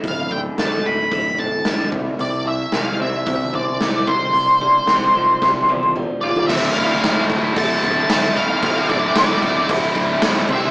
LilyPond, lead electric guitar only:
\new Staff \with { instrumentName = "Lead electric guitar" } { \time 4/4 \key d \minor \tempo 4 = 112 f''8 g''8 a''8 b''4 a''4 r8 | d''8 e''8 f''8 e''4 d''4 c''8~ | c''2. r8 d''8 | e''8 f''4 r8 a''4 a''8 f''8 |
f''8 d''8 d''4 r4. e''8 | }